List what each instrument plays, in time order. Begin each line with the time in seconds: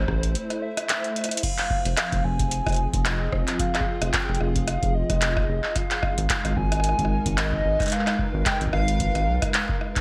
Already playing: analog synth pad A3 E4 A4 C5, soft synth lead C5
0.08 analog synth bass A1, kick, cross-stick
0.23 closed hi-hat
0.35 closed hi-hat
0.50 cross-stick, closed hi-hat
0.62 soft synth lead E5
0.77 cross-stick, closed hi-hat
0.89 clap, closed hi-hat
1.04 closed hi-hat
1.16 cross-stick, closed hi-hat
1.19 cross-stick
1.21 cross-stick
1.24 cross-stick, closed hi-hat
1.29 cross-stick, closed hi-hat
1.37 closed hi-hat
1.43 analog synth pad F3, soft synth lead F5, kick, closed hi-hat, crash
1.58 clap, closed hi-hat
1.70 kick
1.79 analog synth pad C4
1.85 analog synth bass F1, closed hi-hat
1.97 soft synth lead F5, cross-stick, clap, closed hi-hat
2.12 analog synth bass F1, kick, closed hi-hat
2.24 analog synth bass F1, soft synth lead G#5
2.33 analog synth pad G#4
2.39 analog synth pad F4, kick, closed hi-hat
2.51 closed hi-hat
2.67 analog synth bass F1, kick, cross-stick, closed hi-hat
2.68 closed hi-hat
2.72 closed hi-hat
2.74 closed hi-hat
2.76 closed hi-hat
2.94 analog synth bass F1, kick, closed hi-hat
3.05 soft synth lead D#5, cross-stick, clap, closed hi-hat
3.32 analog synth bass F1, kick, cross-stick
3.48 clap, closed hi-hat
3.59 soft synth lead F5, kick, closed hi-hat
3.75 cross-stick, clap, closed hi-hat
3.81 kick
4.02 analog synth bass F1, cross-stick, closed hi-hat
4.13 soft synth lead G5, kick, clap, closed hi-hat
4.29 analog synth bass F1
4.35 closed hi-hat
4.40 analog synth bass F1, soft synth lead F5, cross-stick
4.56 kick, closed hi-hat
4.68 cross-stick, closed hi-hat
4.83 analog synth bass F1, kick, closed hi-hat
4.95 soft synth lead D#5
5.10 analog synth bass F1, kick, cross-stick, closed hi-hat
5.22 clap, closed hi-hat
5.37 kick, cross-stick
5.49 analog synth bass F1
5.64 clap
5.76 analog synth pad G#3, soft synth lead F5, kick, cross-stick, closed hi-hat
5.91 analog synth pad D#4, clap, closed hi-hat
6.03 kick, cross-stick
6.18 analog synth bass G#1, closed hi-hat
6.30 soft synth lead F5, kick, clap, closed hi-hat
6.45 analog synth bass G#1, cross-stick, closed hi-hat
6.50 analog synth pad A#4
6.57 analog synth bass G#1, soft synth lead G#5, kick
6.72 cross-stick, closed hi-hat
6.80 cross-stick, closed hi-hat
6.89 cross-stick
6.99 analog synth bass G#1, kick, closed hi-hat
7.05 cross-stick
7.18 analog synth pad B4
7.26 analog synth bass G#1, kick, closed hi-hat
7.38 soft synth lead D#5, cross-stick, clap, closed hi-hat
7.53 kick
7.65 analog synth bass G#1
7.80 kick, cross-stick, clap, closed hi-hat
7.82 clap, closed hi-hat
7.86 closed hi-hat
7.88 closed hi-hat
7.90 clap, closed hi-hat
7.92 soft synth lead F5, closed hi-hat
7.99 clap
8.07 cross-stick, clap, closed hi-hat
8.19 kick
8.34 analog synth bass G#1
8.46 soft synth lead G5, kick, cross-stick, clap, closed hi-hat
8.61 analog synth bass G#1, closed hi-hat
8.67 kick
8.73 analog synth bass G#1, soft synth lead F5, cross-stick
8.88 closed hi-hat
9.00 kick, closed hi-hat
9.15 analog synth bass G#1, cross-stick, closed hi-hat
9.27 analog synth bass B1
9.42 kick, cross-stick, closed hi-hat
9.54 clap, closed hi-hat
9.69 kick
9.81 cross-stick
9.96 kick, clap, closed hi-hat